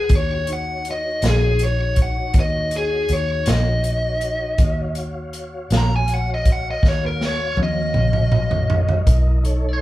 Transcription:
0.00 0.11 G#4 medium
0.09 1.18 D#2 medium
0.09 0.47 D4 medium
0.09 0.46 F#4 medium
0.09 0.47 G4 medium
0.09 kick medium
0.09 closed hi-hat medium
0.15 0.49 C#5 medium
0.47 4.54 D#4 medium
0.47 4.54 F#4 medium
0.47 4.55 C#5 medium
0.47 closed hi-hat medium
0.53 0.86 F#5 medium
0.85 closed hi-hat medium
0.91 1.24 D#5 medium
1.22 2.31 A#1 medium
1.22 snare loud
1.22 closed hi-hat medium
1.28 1.61 G#4 medium
1.59 closed hi-hat medium
1.63 1.98 C#5 medium
1.96 kick medium
1.96 closed hi-hat medium
2.02 2.36 F#5 medium
2.34 3.05 D#2 medium
2.34 kick loud
2.34 closed hi-hat medium
2.40 2.74 D#5 medium
2.71 closed hi-hat medium
2.77 3.10 G#4 medium
3.09 3.44 D#2 medium
3.09 closed hi-hat medium
3.13 3.47 C#5 medium
3.46 4.55 A#1 medium
3.46 4.93 D#5 medium
3.46 snare loud
3.46 closed hi-hat medium
3.84 closed hi-hat medium
4.21 closed hi-hat medium
4.58 5.66 D#2 medium
4.58 9.03 F#4 medium
4.58 9.04 C#5 medium
4.58 9.04 F5 medium
4.58 kick loud
4.58 closed hi-hat medium
4.95 closed hi-hat medium
5.33 closed hi-hat medium
5.70 6.79 A#1 medium
5.70 snare loud
5.70 closed hi-hat medium
5.77 5.92 A#5 medium
5.96 6.11 G#5 medium
6.08 closed hi-hat medium
6.14 6.29 F#5 medium
6.34 6.49 D#5 medium
6.45 kick medium
6.45 closed hi-hat medium
6.52 6.67 F#5 medium
6.71 6.85 D#5 medium
6.83 7.53 D#2 medium
6.83 kick loud
6.83 snare medium
6.88 7.03 C#5 medium
7.06 7.25 A#4 medium
7.21 7.59 C#5 medium
7.21 snare medium
7.57 7.92 D#2 medium
7.57 high tom medium
7.63 9.80 D#5 medium
7.94 9.03 A#1 medium
7.94 mid tom medium
8.13 mid tom medium
8.32 mid tom medium
8.51 floor tom medium
8.70 floor tom medium
8.89 floor tom medium
9.07 9.82 B1 medium
9.07 9.44 E4 medium
9.07 9.44 A#4 medium
9.07 9.44 D#5 medium
9.07 kick loud
9.07 closed hi-hat medium
9.43 9.82 D#4 medium
9.43 9.82 A4 medium
9.43 9.82 C#5 medium
9.43 closed hi-hat medium

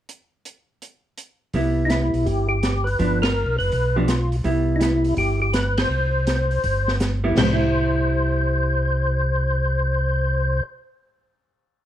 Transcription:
0.09 closed hi-hat soft
0.45 closed hi-hat soft
0.82 closed hi-hat soft
1.18 closed hi-hat soft
1.53 2.10 C2 medium
1.53 2.56 G3 soft
1.53 2.56 B3 soft
1.53 2.56 E4 soft
1.53 kick soft
1.53 open hi-hat soft
1.85 1.90 D#4 soft
1.90 2.28 E4 medium
1.90 snare medium
1.90 closed hi-hat soft
2.14 2.25 B1 medium
2.14 open hi-hat soft
2.26 2.96 G1 medium
2.26 2.47 G4 medium
2.26 kick soft
2.26 open hi-hat soft
2.49 2.87 G4 medium
2.63 snare medium
2.63 closed hi-hat soft
2.84 3.19 B4 medium
2.84 open hi-hat soft
2.99 3.45 G1 medium
2.99 3.21 F3 soft
2.99 3.21 B3 soft
2.99 3.22 D4 soft
2.99 kick soft
2.99 open hi-hat soft
3.22 3.56 A#4 medium
3.22 snare medium
3.22 ride medium
3.46 3.58 B1 medium
3.58 3.71 F#1 medium
3.58 3.97 B4 loud
3.58 open hi-hat soft
3.72 4.41 B1 medium
3.72 kick soft
3.72 open hi-hat soft
3.96 4.07 F3 medium
3.96 4.08 B3 medium
3.96 4.08 D4 medium
3.96 4.09 G4 medium
4.08 4.36 F4 medium
4.08 snare medium
4.08 closed hi-hat soft
4.32 open hi-hat soft
4.44 5.14 C2 medium
4.44 5.46 G3 soft
4.44 5.47 B3 soft
4.44 5.47 E4 soft
4.44 kick soft
4.44 open hi-hat soft
4.76 4.81 D#4 medium
4.80 5.15 E4 medium
4.80 snare medium
4.80 closed hi-hat soft
5.04 open hi-hat soft
5.17 5.86 G1 medium
5.17 5.40 G4 medium
5.17 kick soft
5.17 open hi-hat soft
5.42 5.54 G4 medium
5.53 5.78 B4 medium
5.53 snare medium
5.53 closed hi-hat soft
5.77 6.96 C5 medium
5.77 snare medium
5.77 ride medium
5.89 6.59 C2 medium
6.27 snare medium
6.27 closed hi-hat soft
6.51 open hi-hat soft
6.64 7.33 G1 medium
6.64 kick soft
6.64 open hi-hat soft
6.88 snare soft
7.00 snare medium
7.00 closed hi-hat soft
7.24 7.27 G3 medium
7.24 7.35 B3 medium
7.24 7.35 E4 medium
7.28 10.58 G3 medium
7.36 10.61 C2 medium
7.36 10.63 C5 medium
7.36 snare medium
7.36 floor tom medium
7.36 crash medium
7.53 10.82 E4 medium

